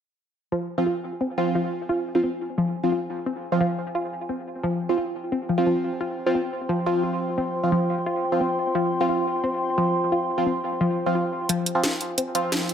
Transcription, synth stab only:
0.78 0.83 F3 loud
0.78 0.83 C4 medium
0.78 0.83 F4 loud
1.38 2.13 F3 loud
1.38 2.13 C4 medium
1.38 2.13 F4 loud
2.15 2.20 F3 medium
2.15 2.20 C4 medium
2.15 2.20 F4 medium
2.84 2.92 F3 medium
2.84 2.92 C4 medium
2.84 2.92 F4 medium
3.52 3.57 F3 medium
3.52 3.57 C4 medium
3.52 3.57 F4 loud
4.89 4.95 F3 medium
4.89 4.95 C4 medium
4.89 4.94 F4 medium
5.58 6.24 F3 medium
5.58 6.24 C4 medium
5.58 6.24 F4 medium
6.26 6.32 F3 loud
6.26 6.32 C4 medium
6.26 6.32 F4 loud
6.86 7.61 F3 loud
6.86 7.61 C4 medium
6.86 7.61 F4 loud
7.64 7.69 F3 medium
7.64 7.69 C4 medium
7.64 7.69 F4 medium
8.32 8.41 F3 medium
8.32 8.41 C4 medium
8.32 8.41 F4 medium
9.01 9.06 F3 loud
9.01 9.06 C4 medium
9.01 9.06 F4 loud
10.38 10.43 F3 medium
10.38 10.43 C4 medium
10.38 10.43 F4 medium
11.06 11.15 F3 medium
11.06 11.15 C4 medium
11.06 11.15 F4 medium
11.75 11.80 F3 loud
11.75 11.80 C4 medium
11.75 11.80 F4 loud
12.35 12.74 F3 medium
12.35 12.74 C4 medium
12.35 12.74 F4 loud

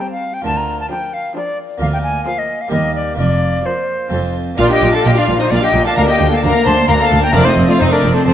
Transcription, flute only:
0.00 0.10 G5 medium
0.12 0.35 F5 medium
0.34 0.45 G5 medium
0.45 0.58 A5 medium
0.57 0.79 A#5 medium
0.80 0.90 A5 medium
0.90 1.15 G5 medium
1.14 1.36 F5 medium
1.37 1.58 D5 medium
1.81 1.86 F5 medium
1.93 1.98 G5 medium
2.03 2.25 G#5 medium
2.26 2.40 F5 medium
2.39 2.63 D#5 medium
2.61 2.71 F5 medium
2.72 2.95 D#5 medium
2.95 3.17 D5 medium
3.18 3.67 D5 medium
3.66 4.36 C5 medium
4.60 4.71 D5 medium
4.71 4.96 D#5 medium
4.95 5.06 F5 medium
5.06 5.11 D#5 medium
5.18 5.24 D5 medium
5.39 5.52 C5 medium
5.51 5.63 D5 medium
5.63 5.85 D#5 medium
5.86 5.96 F5 medium
5.97 6.02 F5 loud
6.08 6.31 D#5 medium
6.31 6.43 F5 medium
6.43 6.65 F5 medium
6.65 6.88 A5 medium
6.88 6.94 F5 medium
7.00 7.22 F5 medium
7.23 7.36 G5 medium
7.34 7.46 A#4 loud
7.45 7.67 C5 medium
7.68 7.73 D5 medium
7.78 7.84 C5 medium
7.90 8.15 A#4 medium
8.14 8.25 A4 medium
8.26 8.34 A4 medium

